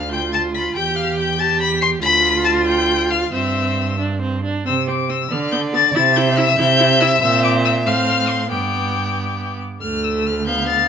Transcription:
0.00 0.73 D2 medium
0.00 0.12 F5 medium
0.00 0.11 F6 medium
0.11 0.78 F4 medium
0.11 0.21 G5 medium
0.11 0.32 G6 loud
0.33 0.42 A5 medium
0.33 0.41 A6 medium
0.55 0.75 B5 medium
0.55 0.63 B6 medium
0.76 2.01 E2 medium
0.76 1.40 G4 medium
0.76 0.97 G5 medium
0.76 0.98 G6 loud
0.96 1.18 F5 medium
0.96 1.17 F6 medium
1.18 1.42 G5 medium
1.18 1.41 G6 medium
1.39 2.02 G4 medium
1.39 1.60 A5 medium
1.39 1.60 A6 loud
1.60 1.68 B5 medium
1.60 1.81 B6 loud
1.82 1.90 C6 loud
1.82 1.90 C7 loud
2.02 3.29 D2 medium
2.02 3.29 F4 medium
2.02 2.44 B5 loud
2.02 2.46 B6 loud
2.45 2.53 A5 medium
2.45 2.66 A6 loud
2.67 3.12 G5 medium
2.67 3.10 G6 loud
3.10 3.33 F5 medium
3.10 3.32 F6 medium
3.33 4.44 G2 medium
3.33 3.99 C4 medium
3.33 3.99 E5 medium
3.33 3.99 E6 medium
4.00 4.21 D4 medium
4.22 4.44 C4 medium
4.44 4.66 D4 medium
4.66 5.23 C3 medium
4.66 4.74 C4 medium
4.66 4.87 E6 loud
4.88 4.96 C4 medium
4.88 5.11 D6 medium
5.09 5.17 C4 medium
5.09 5.34 E6 medium
5.31 5.88 D3 medium
5.31 5.39 B3 medium
5.31 5.97 D5 medium
5.31 5.51 F6 loud
5.52 5.60 B3 medium
5.52 5.60 G6 loud
5.73 5.81 B3 medium
5.73 5.95 A6 loud
5.95 6.51 C3 loud
5.95 6.03 E4 medium
5.95 7.88 E5 loud
5.95 6.18 A6 loud
6.16 6.24 E4 medium
6.16 6.39 G6 loud
6.38 6.46 E4 medium
6.38 6.58 E6 loud
6.59 7.15 C3 loud
6.59 6.67 E4 medium
6.59 7.02 G6 loud
6.79 6.87 E4 medium
7.00 7.09 E4 medium
7.00 7.21 E6 loud
7.22 7.88 A#2 loud
7.22 7.82 C4 medium
7.22 7.43 E6 loud
7.44 7.52 D6 loud
7.65 7.73 E6 loud
7.86 8.53 A2 medium
7.86 8.50 C4 medium
7.86 8.51 F5 medium
7.86 8.31 F6 loud
8.29 8.50 C6 loud
8.50 9.62 G2 medium
8.50 9.59 B3 medium
8.50 9.47 G5 medium
8.50 9.58 D6 medium
9.81 10.88 D2 medium
9.81 10.49 A3 medium
9.81 10.05 F6 loud
10.04 10.28 E6 medium
10.26 10.46 F6 loud
10.46 10.88 B3 medium
10.46 10.88 F5 medium
10.46 10.68 G6 medium
10.69 10.88 A6 medium

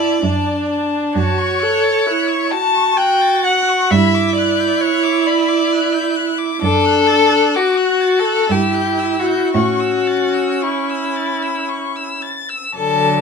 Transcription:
0.00 0.23 E4 soft
0.00 0.70 D5 medium
0.00 0.22 A5 soft
0.23 1.03 F#2 medium
0.23 1.17 D4 soft
0.23 0.68 A5 soft
0.69 1.15 A5 soft
1.15 1.88 F#2 medium
1.15 1.64 F#4 soft
1.15 2.53 C#5 medium
1.15 1.39 A5 soft
1.38 1.63 C#6 soft
1.61 2.08 A4 soft
1.61 1.85 F#6 soft
1.83 2.08 A6 soft
2.06 2.53 E4 soft
2.06 2.30 F#6 soft
2.29 2.52 C#6 soft
2.51 2.96 F#4 soft
2.51 2.76 A5 soft
2.51 2.99 A5 medium
2.75 2.99 C#6 soft
2.97 3.92 F#4 medium
2.97 3.44 G5 medium
2.97 3.23 F#6 soft
3.21 3.46 A6 soft
3.45 3.92 F#5 medium
3.45 3.70 F#6 soft
3.69 3.91 C#6 soft
3.91 4.64 G2 medium
3.91 6.62 E4 medium
3.91 4.36 E5 medium
3.91 4.16 B5 soft
4.14 4.39 D6 soft
4.36 4.83 D5 medium
4.36 4.62 F#6 soft
4.60 4.83 G6 soft
4.81 5.28 C#5 medium
4.81 5.05 F#6 soft
5.03 5.28 D6 soft
5.26 6.17 D5 medium
5.26 5.50 B5 soft
5.48 5.74 D6 soft
5.72 5.95 F#6 soft
5.94 6.18 G6 soft
6.16 6.40 F#6 soft
6.39 6.61 D6 soft
6.62 7.37 F#2 medium
6.62 7.57 D4 medium
6.62 7.57 A4 medium
6.62 6.87 D6 soft
6.85 7.08 F#6 soft
7.07 7.33 A6 soft
7.31 7.56 F#6 soft
7.55 8.50 F#4 soft
7.55 8.21 F#4 medium
7.55 7.79 D6 soft
7.77 8.02 F#6 soft
8.00 8.27 A6 soft
8.19 8.53 A4 medium
8.25 8.49 F#6 soft
8.50 9.34 G2 soft
8.50 9.57 E4 soft
8.50 9.21 G4 medium
8.50 8.76 E6 soft
8.74 9.01 G6 soft
8.99 9.27 E6 soft
9.19 9.55 F#4 medium
9.26 9.52 G6 soft
9.53 10.43 A2 soft
9.53 12.25 C#4 soft
9.53 10.65 F#4 medium
9.53 9.82 C#6 soft
9.80 10.08 E6 soft
10.07 10.35 A6 soft
10.34 10.63 E6 soft
10.62 12.25 E4 soft
10.62 10.91 C#6 soft
10.89 11.18 E6 soft
11.16 11.44 A6 soft
11.42 11.71 E6 soft
11.69 11.97 C#6 soft
11.96 12.24 E6 soft
12.22 12.51 A6 soft
12.49 12.74 E6 soft
12.75 13.21 D3 soft
12.75 13.21 F#3 soft
12.75 13.21 A4 medium
12.75 13.21 A5 medium

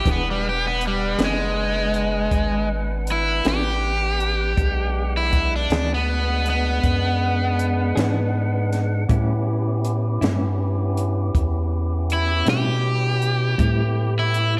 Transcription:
0.04 1.16 E1 medium
0.04 0.29 E3 medium
0.04 4.53 B3 medium
0.04 0.29 B3 medium
0.04 4.53 D4 medium
0.04 4.53 B4 medium
0.04 4.53 F#5 medium
0.04 kick medium
0.04 closed hi-hat medium
0.08 0.27 B3 medium
0.08 0.29 D4 medium
0.08 0.29 G#4 medium
0.30 0.46 G3 medium
0.49 0.65 G4 medium
0.67 0.83 B3 medium
0.81 closed hi-hat medium
0.87 1.21 G3 medium
1.19 2.29 F#1 medium
1.19 1.42 E3 soft
1.19 1.42 B3 medium
1.19 1.42 D4 medium
1.19 1.41 G#4 medium
1.19 snare medium
1.19 closed hi-hat medium
1.24 2.68 G#3 medium
1.94 closed hi-hat medium
2.31 3.41 G#1 medium
2.31 kick medium
2.31 closed hi-hat medium
3.07 closed hi-hat medium
3.12 3.46 E4 medium
3.45 4.55 A1 medium
3.45 3.68 E3 soft
3.45 3.68 B3 soft
3.45 3.68 D4 medium
3.45 3.68 G#4 medium
3.45 snare loud
3.45 closed hi-hat medium
3.49 5.12 G4 medium
4.20 closed hi-hat soft
4.56 5.67 B1 medium
4.56 9.04 G#3 medium
4.56 9.04 B3 medium
4.56 9.04 D4 medium
4.56 9.04 F#5 medium
4.56 kick medium
4.56 closed hi-hat medium
5.17 5.52 E4 medium
5.33 kick medium
5.33 closed hi-hat medium
5.56 5.90 D4 medium
5.70 6.80 D2 medium
5.70 5.94 E3 soft
5.70 5.94 B3 medium
5.70 5.94 D4 medium
5.70 5.94 G#4 medium
5.70 snare medium
5.70 closed hi-hat medium
5.94 6.47 B3 medium
6.46 8.69 B3 medium
6.46 closed hi-hat medium
6.84 7.93 F#2 medium
6.84 kick medium
6.84 closed hi-hat medium
7.59 closed hi-hat medium
7.96 9.06 G#2 medium
7.96 8.19 E3 medium
7.96 8.19 B3 medium
7.96 8.19 D4 medium
7.96 8.19 G#4 medium
7.96 snare loud
7.96 closed hi-hat medium
8.73 snare soft
8.73 closed hi-hat medium
9.08 9.32 A2 medium
9.08 10.18 A2 medium
9.08 9.32 G3 medium
9.08 13.55 B3 medium
9.08 13.55 C#4 medium
9.08 9.32 C#4 medium
9.08 13.55 E4 medium
9.08 9.32 E4 medium
9.08 13.55 G4 medium
9.08 kick medium
9.08 closed hi-hat medium
9.85 closed hi-hat medium
10.21 11.31 G2 medium
10.21 10.45 A2 medium
10.21 10.45 G3 medium
10.21 10.45 C#4 medium
10.21 10.44 E4 medium
10.21 snare medium
10.21 closed hi-hat medium
10.97 closed hi-hat medium
11.35 12.43 E2 medium
11.35 kick medium
11.35 closed hi-hat medium
12.10 12.48 E4 medium
12.10 closed hi-hat medium
12.46 12.69 A2 soft
12.46 13.56 B2 medium
12.46 12.69 G3 medium
12.46 12.69 C#4 medium
12.46 12.69 E4 medium
12.46 snare medium
12.46 closed hi-hat medium
12.50 14.13 G4 medium
13.22 closed hi-hat medium
13.58 13.81 A2 medium
13.58 14.60 A2 medium
13.58 13.81 G3 medium
13.58 14.60 A3 medium
13.58 14.60 B3 medium
13.58 13.82 C4 medium
13.58 14.60 E4 medium
13.58 13.82 E4 medium
13.58 14.60 G4 medium
13.58 kick loud
13.58 closed hi-hat medium
14.19 14.54 E4 medium
14.34 closed hi-hat medium

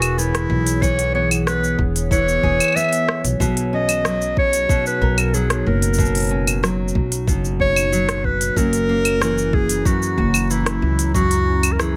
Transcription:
0.00 0.45 E1 medium
0.00 0.81 E3 medium
0.00 3.41 E3 medium
0.00 0.18 B3 medium
0.00 3.41 B3 medium
0.00 0.19 F#4 medium
0.00 2.42 G#4 medium
0.00 4.89 G#4 medium
0.00 0.10 A#4 medium
0.00 open hi-hat soft
0.00 cabasa medium
0.00 claves medium
0.13 10.78 C#5 medium
0.18 1.14 B3 medium
0.18 0.83 E4 loud
0.18 cabasa medium
0.35 cross-stick medium
0.35 open hi-hat soft
0.35 cabasa soft
0.50 1.74 B1 loud
0.67 open hi-hat soft
0.67 cabasa medium
0.82 2.10 E3 medium
0.82 1.14 C#5 loud
0.82 kick loud
0.82 cabasa medium
0.99 open hi-hat soft
0.99 cabasa soft
1.15 1.46 B3 medium
1.15 1.29 C#5 medium
1.31 open hi-hat medium
1.31 cabasa medium
1.31 claves medium
1.47 2.75 B3 medium
1.47 1.82 B4 loud
1.47 cross-stick medium
1.47 cabasa medium
1.64 cabasa soft
1.79 2.38 E1 medium
1.79 kick loud
1.96 open hi-hat medium
1.96 cabasa medium
2.11 3.47 E3 medium
2.11 2.77 C#5 loud
2.11 kick loud
2.11 cabasa medium
2.28 cabasa soft
2.43 2.57 E1 medium
2.43 3.47 G#4 medium
2.43 kick medium
2.60 open hi-hat medium
2.60 cabasa medium
2.60 claves medium
2.64 claves medium
2.68 claves soft
2.72 3.73 B3 medium
2.72 3.24 E5 loud
2.72 claves soft
2.77 cabasa medium
2.77 claves soft
2.81 claves soft
2.84 claves soft
2.89 open hi-hat soft
2.89 claves soft
2.93 cabasa soft
3.09 cross-stick medium
3.24 3.37 B1 medium
3.24 open hi-hat medium
3.24 cabasa medium
3.40 4.64 B1 loud
3.40 8.57 B2 medium
3.40 4.68 B2 medium
3.40 kick loud
3.40 cabasa medium
3.57 open hi-hat soft
3.57 cabasa soft
3.73 6.30 C#4 medium
3.73 4.34 D#5 loud
3.89 open hi-hat medium
3.89 cabasa medium
3.89 claves medium
4.05 5.33 F#3 medium
4.05 cross-stick medium
4.05 cabasa soft
4.22 cabasa soft
4.36 8.57 D#4 medium
4.36 4.83 C#5 loud
4.36 kick loud
4.53 open hi-hat medium
4.53 cabasa medium
4.69 5.97 B2 medium
4.69 kick loud
4.69 cabasa medium
4.86 5.20 B4 medium
4.86 cabasa soft
5.01 5.61 B1 medium
5.01 8.52 A#4 medium
5.01 kick medium
5.18 5.36 A#4 medium
5.18 open hi-hat soft
5.18 cabasa medium
5.18 claves medium
5.34 6.63 F#3 medium
5.34 5.66 G#4 medium
5.34 cabasa medium
5.50 cross-stick medium
5.50 open hi-hat soft
5.50 cabasa soft
5.66 6.90 F#1 loud
5.66 6.92 A#4 medium
5.82 open hi-hat medium
5.82 cabasa medium
5.94 cabasa soft
5.98 7.26 B2 medium
5.98 kick loud
5.98 cabasa medium
6.05 cabasa soft
6.15 open hi-hat soft
6.15 cabasa soft
6.17 open hi-hat soft
6.20 open hi-hat soft
6.22 open hi-hat soft
6.24 open hi-hat soft
6.29 8.89 C#4 medium
6.29 open hi-hat soft
6.47 open hi-hat medium
6.47 cabasa medium
6.47 claves medium
6.63 7.92 F#3 medium
6.63 cross-stick medium
6.63 cabasa medium
6.88 cabasa soft
6.95 7.27 B1 medium
6.95 kick medium
7.12 open hi-hat medium
7.12 cabasa medium
7.27 8.51 F#1 medium
7.27 8.57 B2 medium
7.27 kick loud
7.27 cabasa medium
7.45 cabasa soft
7.60 8.26 C#5 loud
7.60 kick medium
7.76 cabasa medium
7.76 claves medium
7.92 9.21 F#3 medium
7.92 cabasa medium
8.09 cross-stick medium
8.09 open hi-hat soft
8.09 cabasa soft
8.24 8.58 B4 loud
8.24 kick medium
8.41 open hi-hat medium
8.41 cabasa medium
8.56 9.81 F#1 medium
8.56 9.84 F#2 medium
8.56 11.96 F#3 medium
8.56 9.56 A#4 loud
8.56 kick loud
8.56 cabasa medium
8.73 open hi-hat soft
8.73 cabasa soft
8.89 11.47 A#3 medium
9.05 open hi-hat medium
9.05 claves medium
9.18 10.50 E3 medium
9.18 11.96 C#4 medium
9.18 cross-stick medium
9.18 cabasa medium
9.29 11.96 E4 medium
9.38 cabasa soft
9.53 9.87 G#4 loud
9.53 11.96 A#5 medium
9.53 kick loud
9.69 open hi-hat medium
9.69 cabasa medium
9.85 11.14 F#2 medium
9.85 10.52 F#4 medium
9.85 kick loud
9.85 cabasa medium
10.02 cabasa soft
10.18 10.77 F#1 medium
10.18 11.96 F#4 medium
10.18 kick medium
10.34 cabasa medium
10.34 claves medium
10.50 11.79 E3 medium
10.50 11.14 E4 medium
10.50 cabasa medium
10.66 cross-stick medium
10.66 open hi-hat soft
10.66 cabasa soft
10.82 11.96 C#2 loud
10.99 open hi-hat medium
10.99 cabasa medium
11.15 11.96 F#2 medium
11.15 11.74 F#4 loud
11.15 kick loud
11.15 cabasa medium
11.31 open hi-hat soft
11.31 cabasa soft
11.63 open hi-hat medium
11.63 cabasa medium
11.63 claves medium
11.72 11.81 A#4 medium
11.79 11.96 E3 medium
11.79 11.96 G#4 medium
11.79 cross-stick medium
11.79 cabasa medium

